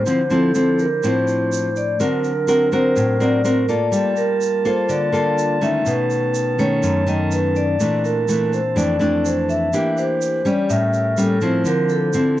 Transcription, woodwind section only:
0.05 1.97 F3 medium
0.05 1.97 D4 medium
0.05 1.97 E4 medium
0.05 1.97 C5 medium
1.99 3.76 F#3 medium
1.99 3.76 C4 medium
1.99 3.76 D4 medium
1.99 3.76 A#4 medium
3.93 5.84 G3 medium
3.93 5.84 A#3 medium
3.93 5.84 F4 medium
3.93 9.68 A5 medium
5.86 7.78 D#3 medium
5.86 7.77 B3 medium
5.86 7.77 C#4 medium
7.80 10.67 E3 medium
7.80 9.71 C4 medium
7.80 10.66 D4 medium
9.74 10.69 G4 medium
10.70 11.65 G3 medium
10.70 11.65 C#4 medium
10.70 11.65 A4 medium
10.70 11.65 A#4 medium
11.65 12.40 F3 medium
11.65 12.40 D4 medium
11.65 12.40 E4 medium
11.65 12.40 C5 medium

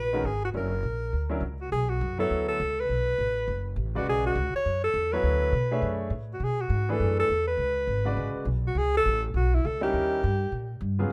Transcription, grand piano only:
0.13 0.23 D#3 medium
0.13 0.23 G#3 medium
0.13 0.24 C#4 medium
0.13 0.24 F#4 medium
0.13 0.24 A#4 medium
0.54 0.70 F#3 soft
0.54 0.70 C#4 soft
0.54 0.70 D4 soft
0.54 0.70 E4 soft
0.54 0.70 A#4 medium
1.29 1.40 F#3 medium
1.29 1.40 C#4 medium
1.29 1.41 D4 medium
1.29 1.41 E4 medium
1.29 1.41 A#4 medium
2.18 2.57 F#3 medium
2.18 2.57 B3 medium
2.18 2.57 E4 medium
2.18 2.57 A4 medium
2.18 2.58 C#5 medium
3.95 4.33 C#3 medium
3.95 4.33 G#3 medium
3.95 4.34 F#4 medium
3.95 4.34 B4 medium
3.95 4.34 D5 medium
5.13 5.51 F#3 medium
5.13 5.51 B3 medium
5.13 5.51 E4 medium
5.13 5.51 A4 medium
5.13 5.51 C#5 medium
5.71 6.09 A3 medium
5.71 6.09 D4 medium
5.71 6.09 G#4 medium
5.71 6.10 C#5 medium
5.71 6.10 E5 medium
6.89 7.27 E3 medium
6.89 7.27 A3 medium
6.89 7.27 D4 medium
6.89 7.27 G#4 medium
6.89 7.27 B4 medium
8.05 8.44 C#3 medium
8.05 8.44 G#3 medium
8.05 8.44 F#4 medium
8.05 8.44 B4 medium
8.05 8.44 D5 medium
9.81 10.20 G3 medium
9.81 10.20 C#4 medium
9.81 10.20 D#4 medium
9.81 10.20 E4 medium
9.81 10.20 A#4 medium
10.99 11.12 C#3 medium
10.99 11.12 F#3 medium
10.99 11.12 B3 medium
10.99 11.12 F4 medium
10.99 11.12 G#4 medium

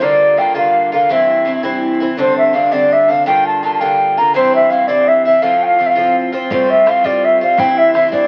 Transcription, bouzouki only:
0.00 0.36 G2 medium
0.00 0.37 D3 medium
0.00 0.38 A#3 medium
0.00 0.38 F4 medium
0.37 0.55 G2 soft
0.37 0.55 D3 soft
0.37 0.54 A#3 medium
0.37 0.53 F4 soft
0.55 0.93 G2 medium
0.55 0.93 D3 medium
0.55 0.92 A#3 medium
0.55 0.91 F4 medium
0.92 1.10 D3 soft
0.92 1.10 A#3 soft
0.92 1.10 F4 medium
1.09 1.44 G2 medium
1.09 1.44 E3 medium
1.09 1.45 C4 medium
1.09 1.46 E4 medium
1.45 1.63 G2 soft
1.45 1.63 E3 soft
1.45 1.62 C4 soft
1.45 1.62 E4 medium
1.63 2.01 G2 medium
1.63 2.01 E3 medium
1.63 2.00 C4 medium
1.63 1.99 E4 medium
2.00 2.18 E3 soft
2.00 2.17 C4 soft
2.00 2.18 E4 medium
2.17 2.52 G2 medium
2.17 2.53 D3 medium
2.17 2.54 C4 medium
2.17 2.54 D4 medium
2.53 2.71 G2 soft
2.53 2.71 D3 soft
2.53 2.71 C4 soft
2.53 2.70 D4 soft
2.71 3.09 G2 soft
2.71 3.09 D3 medium
2.71 3.09 C4 medium
2.71 3.07 D4 medium
3.08 3.25 D3 soft
3.08 3.27 C4 soft
3.08 3.26 D4 soft
3.26 3.62 G2 medium
3.26 3.63 D3 medium
3.26 3.63 A#3 medium
3.26 3.64 F4 medium
3.63 3.81 G2 medium
3.63 3.80 D3 soft
3.63 3.80 A#3 soft
3.63 3.79 F4 medium
3.80 4.18 G2 medium
3.80 4.18 D3 medium
3.80 4.18 A#3 soft
3.80 4.16 F4 medium
4.17 4.34 D3 soft
4.17 4.35 A#3 soft
4.17 4.35 F4 soft
4.34 4.69 G2 medium
4.34 4.70 E3 medium
4.34 4.71 C4 medium
4.34 4.71 E4 medium
4.70 4.88 G2 soft
4.70 4.87 E3 soft
4.70 4.87 C4 soft
4.70 4.87 E4 medium
4.88 5.26 G2 medium
4.88 5.25 E3 medium
4.88 5.26 C4 medium
4.88 5.24 E4 soft
5.25 5.42 E3 soft
5.25 5.42 C4 soft
5.25 5.43 E4 medium
5.42 5.77 A2 medium
5.42 5.79 F3 medium
5.42 5.80 C4 medium
5.42 5.80 F4 medium
5.79 5.96 A2 soft
5.79 5.96 F3 soft
5.79 5.95 C4 soft
5.79 5.94 F4 soft
5.95 6.34 A2 medium
5.95 6.33 F3 medium
5.95 6.33 C4 medium
5.95 6.31 F4 medium
6.33 6.51 F3 soft
6.33 6.50 C4 medium
6.33 6.50 F4 medium
6.50 6.85 A2 medium
6.50 6.87 G3 medium
6.50 6.86 C4 medium
6.50 6.88 F4 medium
6.86 7.04 A2 soft
6.86 7.04 G3 soft
6.86 7.03 C4 medium
6.86 7.03 F4 soft
7.04 7.42 A2 medium
7.04 7.43 G3 soft
7.04 7.41 C4 medium
7.04 7.40 F4 medium
7.41 7.58 G3 soft
7.41 7.57 C4 soft
7.41 7.58 F4 soft
7.57 7.93 G2 medium
7.57 7.94 E3 medium
7.57 7.95 C4 medium
7.57 7.95 E4 medium
7.94 8.12 G2 soft
7.94 8.12 E3 medium
7.94 8.11 C4 medium
7.94 8.11 E4 medium
8.12 8.28 G2 soft
8.12 8.28 E3 medium
8.12 8.28 C4 medium
8.12 8.28 E4 medium

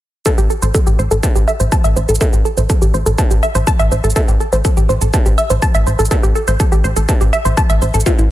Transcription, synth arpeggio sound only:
0.26 0.32 A4 loud
0.38 0.44 G4 medium
0.50 0.60 A4 medium
0.62 0.72 C5 medium
0.74 0.81 A4 medium
0.87 0.93 G4 medium
0.99 1.03 C5 medium
1.11 1.17 A4 medium
1.23 1.27 A5 medium
1.36 1.42 G4 medium
1.48 1.51 E5 medium
1.60 1.66 C5 medium
1.72 1.76 A5 loud
1.84 1.91 E5 loud
1.96 2.00 C5 medium
2.09 2.15 A4 medium
2.21 2.27 A4 medium
2.33 2.39 G4 medium
2.45 2.55 A4 medium
2.57 2.67 C5 medium
2.70 2.76 A4 medium
2.82 2.88 G4 medium
2.94 2.98 C5 medium
3.06 3.13 A4 medium
3.18 3.22 A5 medium
3.31 3.37 G4 medium
3.43 3.47 E5 medium
3.55 3.61 C5 medium
3.67 3.71 A5 loud
3.79 3.86 E5 loud
3.92 3.95 C5 medium
4.04 4.10 A4 medium
4.16 4.22 A4 loud
4.28 4.35 G4 medium
4.40 4.50 A4 medium
4.53 4.62 C5 medium
4.65 4.71 A4 medium
4.77 4.83 G4 medium
4.89 4.93 C5 medium
5.01 5.08 A4 medium
5.14 5.17 A5 medium
5.26 5.32 G4 medium
5.38 5.42 E5 loud
5.50 5.57 C5 medium
5.62 5.66 A5 loud
5.75 5.81 E5 loud
5.87 5.91 C5 medium
5.99 6.05 A4 medium
6.11 6.17 A4 medium
6.23 6.30 G4 medium
6.35 6.45 A4 medium
6.48 6.57 C5 medium
6.60 6.66 A4 medium
6.72 6.78 G4 medium
6.84 6.88 C5 medium
6.96 7.03 A4 medium
7.09 7.12 A5 medium
7.21 7.27 G4 medium
7.33 7.37 E5 loud
7.45 7.52 C5 medium
7.57 7.61 A5 loud
7.70 7.76 E5 loud
7.82 7.86 C5 medium
7.94 8.00 A4 medium
8.06 8.13 F4 loud
8.18 8.25 E4 medium

